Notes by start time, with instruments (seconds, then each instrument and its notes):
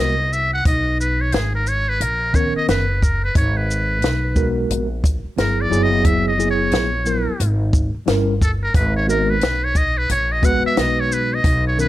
Already playing: tine electric piano G#3 B3 F#4 A#4
0.00 upright bass C2, muted trumpet D#5
0.33 muted trumpet E5, shaker
0.54 muted trumpet F#5
0.65 upright bass B1, muted trumpet D#5, kick, closed hi-hat
1.01 muted trumpet B4, shaker
1.21 muted trumpet C#5
1.32 upright bass G#1, muted trumpet G#4, snare, closed hi-hat
1.55 muted trumpet A#4
1.67 muted trumpet C#5, closed hi-hat, shaker
1.89 muted trumpet B4
2.00 upright bass A#1, muted trumpet A#4, closed hi-hat
2.33 tine electric piano D#3 B3 C#4 A#4, muted trumpet C#5, kick, shaker
2.55 muted trumpet D#5, muted upright bass stroke
2.68 upright bass F#1, muted trumpet B4, snare, closed hi-hat
3.02 muted trumpet A#4, kick, shaker
3.24 muted trumpet B4
3.35 upright bass G#1, muted trumpet C#5, kick, closed hi-hat
3.57 muted trumpet B4
3.71 shaker
4.02 upright bass B1, snare, closed hi-hat
4.35 tine electric piano G#3 B3 F#4 A#4, kick, shaker
4.70 upright bass A#1, closed hi-hat
5.04 kick, closed hi-hat, shaker
5.25 muted upright bass stroke
5.36 upright bass G1, tine electric piano F#3 B3 E4 G#4, muted trumpet A#4, snare, closed hi-hat
5.61 muted trumpet D5
5.70 upright bass F#1, tine electric piano F#3 A#3 E4 G#4, shaker
5.77 tine electric piano B3
5.83 muted trumpet D#5
6.05 muted trumpet E5, kick, closed hi-hat
6.28 muted trumpet D#5
6.38 tine electric piano F#3 A#3 E4 G#4, shaker
6.45 tine electric piano B3
6.50 muted trumpet C#5
6.71 upright bass A#1, snare, closed hi-hat
7.05 tine electric piano F#3 B3 E4 A#4, shaker
7.27 muted upright bass stroke
7.40 upright bass G#1, closed hi-hat
7.73 kick, shaker
7.95 muted upright bass stroke
8.06 upright bass G1, tine electric piano G3 C#4 E4 A#4, snare, closed hi-hat
8.42 muted trumpet A4, kick, shaker
8.63 muted trumpet A#4
8.74 upright bass G#1, muted trumpet B4, kick, closed hi-hat
8.96 muted trumpet C#5
9.07 tine electric piano G#3 B3 F#4 A#4, muted trumpet A#4, shaker
9.30 muted trumpet B4
9.41 upright bass B1, snare, closed hi-hat
9.64 muted trumpet C#5
9.75 muted trumpet D#5, kick, closed hi-hat, shaker
9.98 muted trumpet B4
10.10 upright bass A#1, muted trumpet C#5, closed hi-hat
10.32 muted trumpet D#5
10.42 tine electric piano G#3 B3 F#4 B4, muted trumpet F#5, kick, closed hi-hat, shaker
10.64 muted trumpet E5, muted upright bass stroke
10.77 upright bass B1, muted trumpet D#5, snare, closed hi-hat
11.00 muted trumpet C#5
11.12 muted trumpet B4, shaker
11.34 muted trumpet D#5
11.44 upright bass B1, kick, closed hi-hat
11.67 muted trumpet C#5
11.77 tine electric piano D#3 B3 C#4 A#4, muted trumpet B4, shaker